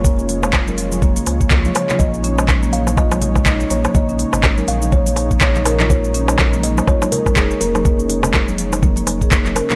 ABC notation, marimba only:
X:1
M:4/4
L:1/16
Q:"Swing 16ths" 1/4=123
K:Bbm
V:1 name="Marimba"
B, D B, A, z B F, z B, B, z B, F, z F, F | B, z D A, z B, B, z F A, z A, E z B, B, | B, D B, A, z B F, z B, B, z B, F, z F, F | B, z D A, z B, B, z F A, z A, E z B, B, |
B, D B, A, z B F, z B, B, z A B, z D B, |]